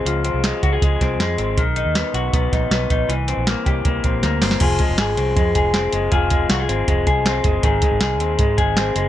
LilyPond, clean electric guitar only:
\new Staff \with { instrumentName = "Clean electric guitar" } { \time 4/4 \key f \phrygian \tempo 4 = 158 <f aes c' aes'>8 c'8 aes8 ges'16 aes'16 aes8 c'8 aes8 c'8 | ees8 ees'8 ces'8 ges'8 ces'8 ees'8 ces'8 ees'8 | e8 c'8 bes8 g'8 bes8 c'8 bes8 c'8 | <f aes'>8 aes8 aes'8 c'8 aes8 aes'8 c'8 aes8 |
<f aes'>8 aes8 ges'16 aes'16 c'8 aes8 aes'8 c'8 aes8 | <ees aes'>8 aes8 aes'8 c'8 aes8 aes'8 c'8 aes8 | }